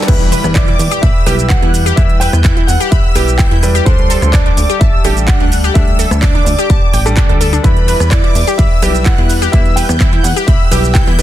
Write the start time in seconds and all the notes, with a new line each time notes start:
0.02 snare
0.07 E2 G3 E4 B4 B5, kick, closed hi-hat, crash, impact, shaker
0.21 closed hi-hat
0.32 B4, open hi-hat, shaker
0.44 E2, cross-stick, closed hi-hat, shaker
0.54 E4 D5 D6, kick, cross-stick, clap, closed hi-hat, shaker
0.68 E4, closed hi-hat
0.79 E2, open hi-hat, shaker
0.91 G4, closed hi-hat, shaker
1.02 B1 E5 B5 E6, kick, closed hi-hat, shaker
1.26 B1 G3 E4 G4 B4, open hi-hat, shaker
1.39 closed hi-hat, shaker
1.49 E4 F#5 F#6, kick, clap, closed hi-hat, shaker
1.62 E2 E4, closed hi-hat
1.74 open hi-hat, shaker
1.86 G4, closed hi-hat, shaker
1.96 E2 G3 E4 B4 E5 E6, kick, closed hi-hat, shaker
2.10 closed hi-hat
2.20 B4 G5 G6, open hi-hat, shaker
2.33 E2, cross-stick, closed hi-hat, shaker
2.44 E4, kick, cross-stick, clap, closed hi-hat, shaker
2.57 E4, closed hi-hat
2.67 E2 F#5 F#6, open hi-hat, shaker
2.80 G4, closed hi-hat, shaker
2.90 B1 E5 B5 E6, kick, closed hi-hat, shaker
3.15 B1 G3 E4 G4 B4, open hi-hat, shaker
3.28 closed hi-hat, shaker
3.38 E4 G5 G6, kick, clap, closed hi-hat, shaker
3.51 E2 E4, closed hi-hat
3.63 G3 E4 B4, open hi-hat, shaker
3.75 G4, closed hi-hat, shaker
3.85 D2 G3 D4 A4 C5 C6, kick, closed hi-hat, shaker
3.99 closed hi-hat
4.10 A4, open hi-hat, shaker
4.22 D2, cross-stick, closed hi-hat, shaker
4.32 D4 D5 D6, kick, cross-stick, clap, closed hi-hat, shaker
4.46 D4, closed hi-hat
4.57 D2, open hi-hat, shaker
4.70 G4, closed hi-hat, shaker
4.79 A1 E5 A5 E6, kick, closed hi-hat, shaker
5.04 A1 G3 D4 G4 A4, open hi-hat, shaker
5.17 closed hi-hat, shaker
5.27 D4 F#5 F#6, kick, clap, closed hi-hat, shaker
5.40 D2 D4, closed hi-hat
5.52 open hi-hat, shaker
5.64 G4, closed hi-hat, shaker
5.74 D2 G3 D4 A4 E5 E6, kick, closed hi-hat, shaker
5.88 closed hi-hat
5.99 A4, open hi-hat, shaker
6.11 D2, cross-stick, closed hi-hat, shaker
6.21 D4 D5 D6, kick, cross-stick, clap, closed hi-hat, shaker
6.35 D4, closed hi-hat
6.45 D2 D5 D6, open hi-hat, shaker
6.59 G4, closed hi-hat, shaker
6.70 A1 A5, kick, closed hi-hat, shaker
6.93 A1 G5, open hi-hat, shaker
7.06 G3 D4 A4, closed hi-hat, shaker
7.17 D4, kick, clap, closed hi-hat, shaker
7.29 D2 A4, closed hi-hat
7.41 A4, open hi-hat, shaker
7.53 D4, closed hi-hat, shaker
7.63 E2 G3 E4 B4 B5, kick, closed hi-hat, shaker
7.77 closed hi-hat
7.88 B4, open hi-hat, ride, shaker
8.00 E2, cross-stick, closed hi-hat, shaker
8.10 E4 D5 D6, kick, cross-stick, clap, closed hi-hat, shaker
8.24 E4, closed hi-hat
8.35 E2, open hi-hat, ride, shaker
8.47 G4, closed hi-hat, shaker
8.58 B1 E5 B5 E6, kick, closed hi-hat, shaker
8.82 B1 G3 E4 G4 B4, open hi-hat, ride, shaker
8.95 closed hi-hat, shaker
9.05 E4 F#5 F#6, kick, clap, closed hi-hat, shaker
9.18 E2 E4, closed hi-hat
9.30 open hi-hat, ride, shaker
9.42 G4, closed hi-hat, shaker
9.52 E2 G3 E4 B4 E5 E6, kick, closed hi-hat, shaker
9.65 closed hi-hat
9.76 B4 G5 G6, open hi-hat, ride, shaker
9.89 E2, cross-stick, closed hi-hat, shaker
10.00 E4, kick, cross-stick, clap, closed hi-hat, shaker
10.13 E4, closed hi-hat
10.23 E2 F#5 F#6, open hi-hat, ride, shaker
10.36 G4, closed hi-hat, shaker
10.47 B1 E5 B5 E6, kick, closed hi-hat, shaker
10.71 B1 G3 E4 G4 B4, open hi-hat, ride, shaker
10.84 closed hi-hat, shaker
10.93 E4 G5 G6, kick, clap, closed hi-hat, shaker
11.07 E2 E4, closed hi-hat
11.19 G3 E4 B4, open hi-hat, ride